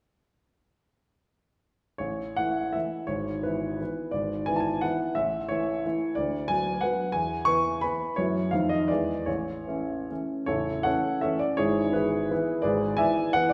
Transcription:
1.98 2.36 A1 soft
1.98 2.37 C#5 medium
2.36 2.71 E3 soft
2.36 2.71 A3 soft
2.36 2.72 E4 soft
2.36 2.74 F#5 medium
2.73 3.06 E3 soft
2.73 3.06 A3 soft
2.73 3.06 E4 soft
2.73 3.08 E5 medium
3.07 3.43 G#1 soft
3.07 3.44 C#5 medium
3.43 3.77 E3 soft
3.43 3.77 B3 soft
3.43 3.77 E4 soft
3.43 4.13 B4 medium
3.80 4.10 E3 soft
3.80 4.11 B3 soft
3.80 4.11 E4 soft
4.11 4.47 G#1 soft
4.11 4.47 D5 medium
4.46 4.80 E3 soft
4.46 4.80 B3 soft
4.46 4.80 E4 soft
4.46 4.54 G#5 medium
4.56 4.63 A5 medium
4.60 4.83 G#5 medium
4.81 5.14 E3 soft
4.81 5.14 B3 soft
4.81 5.14 E4 soft
4.81 5.16 F#5 medium
5.15 5.50 A1 soft
5.15 5.50 E5 medium
5.48 5.82 E3 soft
5.48 5.82 A3 soft
5.48 5.82 E4 soft
5.48 6.16 C#5 medium
5.85 6.14 E3 soft
5.85 6.14 A3 soft
5.85 6.14 E4 soft
6.15 6.48 D2 medium
6.15 6.48 D5 medium
6.48 6.79 F#3 soft
6.48 6.79 B3 soft
6.48 6.80 B4 soft
6.48 6.82 G#5 medium
6.81 7.11 F#3 soft
6.81 7.11 B3 soft
6.81 7.11 B4 soft
6.81 7.13 F#5 medium
7.12 7.46 E2 soft
7.12 7.46 G#5 medium
7.45 7.79 E3 soft
7.45 7.79 B3 soft
7.45 7.80 B4 soft
7.45 7.82 C#6 medium
7.81 8.14 E3 soft
7.81 8.14 B3 soft
7.81 8.14 B4 soft
7.81 8.16 B5 medium
8.16 8.51 F#2 soft
8.16 8.49 E3 soft
8.16 8.49 A3 soft
8.16 8.50 F#4 soft
8.16 8.52 C#5 medium
8.51 8.89 F2 soft
8.51 8.86 D#3 soft
8.51 8.86 A3 soft
8.51 8.87 D#4 soft
8.51 8.70 F5 medium
8.69 8.89 D#5 medium
8.88 9.27 E2 medium
8.88 9.24 E3 soft
8.88 9.24 G#3 soft
8.88 9.25 B3 soft
8.88 9.27 D5 medium
9.26 9.67 A1 soft
9.26 10.09 C#5 medium
9.67 10.06 E3 soft
9.67 10.06 A3 soft
9.67 10.06 C#4 soft
10.10 10.45 E3 soft
10.10 10.46 A3 soft
10.10 10.46 C#4 soft
10.46 10.85 A0 soft
10.46 10.85 A1 soft
10.46 10.83 E4 medium
10.46 10.83 A4 medium
10.46 10.83 C#5 medium
10.83 11.20 E3 soft
10.83 11.20 A3 soft
10.83 11.20 C#4 soft
10.83 11.21 A4 medium
10.83 11.21 C#5 medium
10.83 11.23 F#5 medium
11.21 11.56 E3 soft
11.21 11.56 A3 soft
11.21 11.56 C#4 soft
11.21 11.40 A4 soft
11.21 11.40 C#5 soft
11.21 11.41 E5 medium
11.39 11.58 D5 medium
11.57 11.94 G#1 soft
11.57 11.94 G#2 soft
11.57 11.92 E4 medium
11.57 11.92 G#4 medium
11.57 11.94 C#5 medium
11.93 12.28 E3 soft
11.93 12.28 B3 soft
11.93 12.30 E4 soft
11.93 12.60 G#4 soft
11.93 12.62 B4 medium
12.30 12.60 E3 soft
12.30 12.61 B3 soft
12.30 12.61 E4 medium
12.62 12.98 G#1 medium
12.62 12.98 G#2 soft
12.62 12.96 G#4 medium
12.62 12.96 B4 medium
12.62 12.97 D5 medium
12.97 13.31 E3 soft
12.97 13.31 B3 soft
12.97 13.32 E4 soft
12.97 13.32 D5 medium
12.97 13.32 E5 medium
12.97 13.33 G#5 medium
13.33 13.53 E3 medium
13.33 13.53 B3 medium
13.33 13.53 E4 medium
13.33 13.51 F#5 medium
13.49 13.53 D5 medium

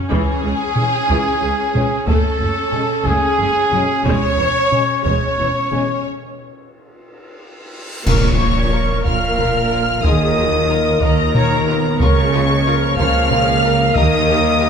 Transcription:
0.00 2.04 C#4 medium
0.11 0.19 C#2 medium
0.11 0.20 C#2 medium
0.11 0.42 E3 medium
0.11 2.03 G#4 loud
0.11 2.03 G#4 medium
0.11 2.03 G#4 loud
0.11 taiko medium
0.44 0.52 C#2 medium
0.44 0.53 C#3 soft
0.76 0.88 E3 medium
0.76 0.88 C#4 medium
0.76 taiko low-mid medium
1.09 1.17 C#2 medium
1.09 1.39 E3 medium
1.09 taiko medium
1.42 1.50 C#2 medium
1.42 1.50 C#3 medium
1.75 1.83 C#2 medium
1.75 1.83 C#3 medium
1.75 1.86 E3 medium
1.75 1.86 C#4 medium
1.75 taiko low-mid soft
2.07 2.15 F#1 medium
2.07 2.15 F#2 medium
2.07 2.38 A3 medium
2.07 6.02 C#4 medium
2.07 3.04 A4 medium
2.07 taiko medium
2.39 2.47 F#1 medium
2.39 2.48 F#2 medium
2.39 2.49 A3 soft
2.72 2.84 G#3 medium
2.72 2.84 C#4 medium
2.72 taiko low-mid medium
3.05 3.13 F#1 medium
3.05 3.14 F#2 medium
3.05 3.37 A3 medium
3.05 4.06 G#4 medium
3.05 4.06 G#4 loud
3.05 4.06 G#4 medium
3.05 taiko medium
3.39 3.47 F#1 medium
3.39 3.47 F#2 medium
3.39 3.48 G#3 medium
3.72 3.80 F#1 medium
3.72 3.80 F#2 medium
3.72 3.81 F#3 medium
3.72 3.85 G#3 medium
3.72 3.85 C#4 medium
3.72 taiko low-mid soft
4.04 4.13 E1 medium
4.04 4.13 E2 medium
4.04 4.37 G#3 medium
4.04 5.03 C#5 loud
4.04 5.03 C#5 medium
4.04 taiko medium
4.38 4.46 E1 medium
4.38 4.46 E2 medium
4.38 4.47 E3 medium
4.72 4.84 G#3 medium
4.72 4.83 C#4 medium
4.72 taiko low-mid medium
5.05 5.13 E1 medium
5.05 5.13 E2 medium
5.05 5.36 G#3 medium
5.05 6.04 C#5 medium
5.05 6.04 C#5 loud
5.05 6.04 C#5 medium
5.05 taiko medium
5.39 5.47 E1 medium
5.39 5.47 E2 soft
5.39 5.47 E3 medium
5.72 5.80 E1 soft
5.72 5.80 E2 medium
5.72 5.80 C#3 medium
5.72 5.84 G#3 medium
5.72 5.84 C#4 medium
5.72 taiko low-mid soft
6.05 reverse cymbal medium
8.06 8.94 A#1 medium
8.06 8.94 A#2 medium
8.06 9.02 A#2 medium
8.06 8.15 F4 medium
8.06 11.96 F4 medium
8.06 8.37 A#4 medium
8.06 11.96 A#4 medium
8.06 8.15 A#4 medium
8.06 9.02 C#5 medium
8.06 9.02 C#6 loud
8.06 concert bass drum medium
8.06 taiko medium
8.06 crash medium
8.06 impact medium
8.39 8.47 F4 medium
8.39 8.47 A#4 medium
8.39 8.72 C#5 medium
8.72 8.80 F4 medium
8.72 8.81 A#4 medium
8.72 10.04 A#4 medium
9.04 9.92 A#1 medium
9.04 9.92 A#2 medium
9.04 9.14 F4 medium
9.04 9.14 A#4 medium
9.04 10.02 F5 medium
9.04 10.02 F6 loud
9.04 taiko medium
9.39 9.48 F4 medium
9.39 9.48 A#4 medium
9.39 taiko low-mid medium
9.71 9.79 F4 medium
9.71 9.79 A#4 medium
10.03 10.90 D#2 medium
10.03 10.90 D#3 medium
10.03 10.12 F4 medium
10.03 10.36 G#4 medium
10.03 10.13 A#4 medium
10.03 11.02 D#5 medium
10.03 11.02 D#6 loud
10.03 taiko loud
10.36 10.69 F#3 medium
10.36 10.45 F4 medium
10.36 10.45 A#4 medium
10.69 10.78 F4 medium
10.69 10.77 A#4 medium
10.69 11.02 A#4 medium
11.01 11.88 D#2 medium
11.01 11.88 D#3 medium
11.01 11.10 F4 medium
11.01 12.00 A#4 medium
11.01 11.11 A#4 medium
11.01 11.34 D#5 medium
11.01 12.00 A#5 loud
11.01 taiko medium
11.35 11.43 F4 medium
11.35 11.43 A#4 medium
11.35 11.67 C#5 medium
11.35 taiko low-mid medium
11.67 11.99 B3 medium
11.67 11.76 F4 medium
11.67 11.75 A#4 medium
11.99 12.86 C#2 medium
11.99 12.86 C#3 medium
11.99 13.91 F3 loud
11.99 14.70 A#3 loud
11.99 12.09 F4 medium
11.99 12.33 A#4 medium
11.99 12.09 A#4 medium
11.99 12.96 C#5 medium
11.99 12.96 C#6 loud
11.99 taiko medium
12.33 12.41 F4 medium
12.33 12.66 G#4 medium
12.33 12.41 A#4 medium
12.66 12.74 F4 medium
12.66 12.97 A#4 medium
12.66 12.74 A#4 medium
12.97 13.84 C#2 medium
12.97 13.84 C#3 medium
12.97 13.06 F4 medium
12.97 13.06 A#4 medium
12.97 13.30 C#5 medium
12.97 13.94 F5 loud
12.97 13.93 F6 loud
12.97 taiko medium
13.31 13.39 F4 medium
13.31 13.63 G#4 medium
13.31 13.39 A#4 medium
13.31 taiko low-mid medium
13.63 13.72 F4 medium
13.63 14.70 A#4 medium
13.63 13.72 A#4 medium
13.95 14.70 D#2 loud
13.95 14.70 D#3 loud
13.95 14.70 G3 loud
13.95 14.04 G4 medium
13.95 14.05 A#4 medium
13.95 14.70 D#5 loud
13.95 14.70 D#6 loud
13.95 taiko loud
14.29 14.37 G4 medium
14.29 14.37 A#4 medium
14.60 14.68 G4 medium
14.60 14.69 A#4 medium

